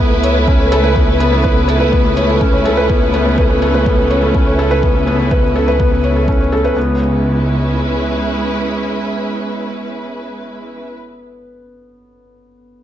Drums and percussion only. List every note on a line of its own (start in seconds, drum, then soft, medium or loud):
0.23 closed hi-hat soft
0.48 kick medium
0.72 closed hi-hat medium
0.96 kick medium
1.20 closed hi-hat soft
1.44 kick medium
1.69 closed hi-hat soft
1.93 kick medium
2.17 closed hi-hat soft
2.41 kick medium
2.65 closed hi-hat medium
2.90 kick medium
3.14 closed hi-hat soft
3.38 kick medium
3.62 closed hi-hat soft
3.86 kick medium
4.11 closed hi-hat soft
4.35 kick medium
4.59 closed hi-hat soft
4.83 kick medium
5.07 closed hi-hat soft
5.31 kick medium
5.56 closed hi-hat soft
5.80 kick medium
6.04 closed hi-hat soft
6.28 kick medium
6.52 closed hi-hat soft